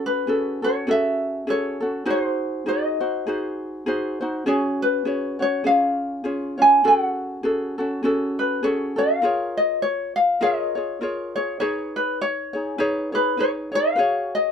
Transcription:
ukulele
Already playing: C#4 F#4 A4
0.06 B4
0.27 C#4 F#4 G#4 A4
0.62 C#4 F#4 A4 C#5
0.87 C#4 F#4 G#4 A4 E5
1.47 C#4 F#4 G#4 A4 C#5
1.80 C#4 F#4 A4
2.05 D#4 F#4 G#4 C5
2.10 C5
2.66 D#4 F#4 G#4 C5 D#5
3.00 D#4 F#4 C5
3.27 D#4 F#4 G#4 C5
3.86 D#4 F#4 G#4 C5
4.21 D#4 F#4 C5
4.46 C#4 F#4 G#4 C#5
4.82 B4
5.05 C#4 F#4 G#4 C#5
5.39 C#4 F#4 C#5
5.64 C#4 F4 G#4 C#5 F5
6.24 C#4 F4 G#4 C#5
6.58 C#4 F4 C#5
6.62 G#5
6.84 C#4 F#4 G#4 A4 F#5
7.43 C#4 F#4 G#4 A4
7.78 C#4 F#4 A4
8.03 C#4 F#4 G#4 A4
8.39 B4
8.63 C#4 F#4 G#4 A4 C#5
8.96 C#4 F#4 A4 F5
9.22 F4 G#4 A#4 C#5
9.57 D#5
9.82 C#5
10.16 F5
10.41 F4 G#4 A#4 C#5 D#5
10.75 F4 G#4 C#5
11.01 F4 G#4 A#4 C#5
11.35 F4 G#4 C#5
11.60 D#4 G#4 B4 C#5
11.96 B4
12.21 C#5
12.53 D#4 G#4 C#5
12.78 D#4 G#4 B4 C#5
13.12 D#4 G#4 B4 C#5
13.37 D#4 G#4 B4 C#5
13.72 D#4 G#4 C#5 F5
13.96 F#4 G#4 B4 C#5
14.35 D#5

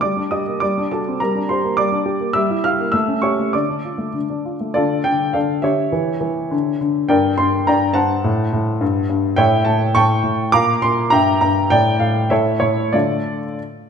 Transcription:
grand piano
0.01 G3 D5 D6
0.17 D4
0.31 G4 D#5 D#6
0.47 A#3
0.60 G3 D5 D6
0.78 D4
0.91 F#4 A4 A5
1.08 C4
1.20 G3 A#4 A#5
1.36 D4
1.49 G4 C5 C6
1.64 A#3
1.77 G3 D5 D6
1.92 D4
2.06 G4
2.20 A#3
2.33 G3 E5 E6
2.50 E4
2.64 G4 F5 F6
2.80 A#3
2.92 A3 E5 E6
3.08 C#4
3.22 G4 C#5 C#6
3.40 A3
3.53 D3 D5 D6
3.69 D4
3.85 F4
3.98 A3
4.13 D3
4.30 D4
4.45 F4
4.61 A3
4.74 D3 F4 A4 D5
5.04 D3 G5
5.33 D3 A4 D5 F5
5.62 D3 G4 C#5 E5
5.92 E3
6.21 E3
6.51 D3
6.81 D3
7.09 G2 A#4 D5 G5
7.38 G2 C6
7.67 G2 D5 G5 A#5
7.94 G2 C5 F#5 A5
8.24 A2
8.53 A2
8.81 G2
9.10 G2
9.36 A2 C#5 E5 G5
9.65 A2 A5
9.95 A2 G5 A5 C#6
10.24 A2
10.52 A#2 F5 A#5 D6
10.82 A#2 C6
11.10 G2 E5 G5 A#5
11.41 G2 A#5
11.70 A2 D5 G5
12.00 A2 F5
12.30 A2 A4 C#5 E5
12.60 A2 C#5
12.93 D3 A3 D4 F4 A4 D5

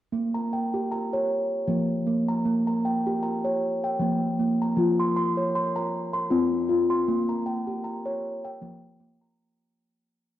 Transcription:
steel tongue drum
0.12 A#3
0.34 A#5
0.53 G5
0.74 G4
0.92 A#5
1.13 C#5
1.68 F3 A#3
2.07 A#3
2.29 A#5
2.45 A#3
2.67 A#5
2.85 G5
3.07 G4
3.23 A#5
3.44 C#5
3.84 G5
3.99 F3 A#3
4.39 A#3
4.62 A#5
4.76 F3 F4
5.00 C6
5.17 C6
5.37 C#5
5.55 C6
5.76 A#5
6.13 C6
6.30 C4 F4
6.69 F4
6.90 C6
7.08 A#3
7.29 A#5
7.46 G5
7.67 G4
7.84 A#5
8.05 C#5
8.45 G5
8.62 F3 A#3
9.00 A#3
9.22 A#5

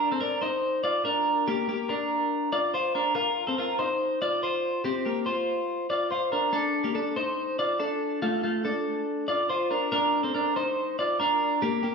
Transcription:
clean electric guitar
0.12 C4 A4
0.21 D4 A#4
0.42 D#4 C5
0.84 F4 D5
1.05 D4 A#4
1.48 A#3 G4
1.69 A#3 G4
1.89 D4 A#4
2.53 F4 D5
2.74 F4 C5
2.95 D4 A#4
3.15 F4 A#4
3.47 C4 A4
3.58 F4 A#4
3.79 D#4 C5
4.22 F4 D5
4.43 F4 C5
4.85 C4 G4
5.05 A#3 G4
5.26 F4 C5
5.90 F4 D5
6.11 F4 C5
6.32 D4 A#4
6.53 D4 A4
6.84 A#3 G4
6.95 D4 A4
7.16 D#4 C5
7.59 F4 D5
7.80 D4 A4
8.22 A3 F4
8.43 A3 F4
8.65 D4 A4
9.28 F4 D5
9.49 F4 C5
9.71 D4 A#4
9.92 D4 A#4
10.23 C4 A4
10.35 D4 A#4
10.56 D#4 C5
10.99 F4 D5
11.20 D4 A#4
11.62 A#3 G4
11.83 A#3 G4

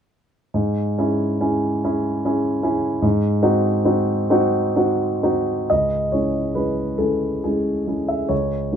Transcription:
grand piano
0.54 G#2
0.98 C#4 E4 G#4
1.41 C#4 E4 G#4
1.84 C#4 E4 G#4
2.25 C#4 E4 G#4
2.63 C#4 E4 G#4
3.02 G#2
3.43 C4 D#4 F#4
3.85 C4 D#4 F#4
4.30 C4 D#4 F#4
4.76 C4 D#4 F#4
5.23 C4 D#4 F#4
5.70 C#2 D#5
6.12 G#3 C#4 E4 C#5
6.55 G#3 C#4 E4 B4
6.98 G#3 C#4 E4 A4
7.44 G#3 C#4 E4 G#4
7.87 G#3 C#4 E4
8.09 E5
8.29 C#2 C#5
8.72 A3 D#4 F#4

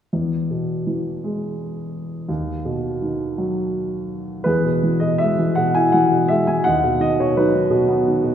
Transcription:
grand piano
0.13 E2
0.51 B2
0.87 E3
1.24 G#3
2.29 D#2
2.65 B2
3.02 D#3
3.38 F#3
4.44 E2 G#4 B4
4.64 B2
4.83 E3
5.00 B2 D#5
5.18 G#3 E5
5.39 E3
5.55 B2 F#5
5.75 E4 G#5
5.92 E3 F#5
6.11 B2
6.28 G#3 E5
6.47 E3 G#5
6.64 D#2 D#5 F#5
6.84 B2
7.00 D#3 D#5
7.20 B2 C#5
7.36 F#3 D#4 B4
7.54 D#3
7.70 B2
7.89 B3
8.08 D#3
8.24 B2

